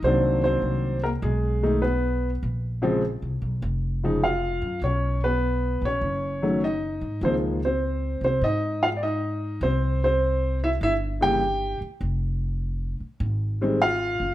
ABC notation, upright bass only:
X:1
M:4/4
L:1/8
Q:"Swing" 1/4=100
K:Fm
V:1 name="Upright bass" clef=bass
C,,2 C,,2 =B,,,4 | B,,,2- (3B,,, C,, =B,,, F,,,3 _G,, | =B,,,3 _B,,, ^F,,,3 A,, | D,,3 C,, A,,4 |
C,,4 G,,,3 z | F,,,3 z A,,,3 _G,,, |]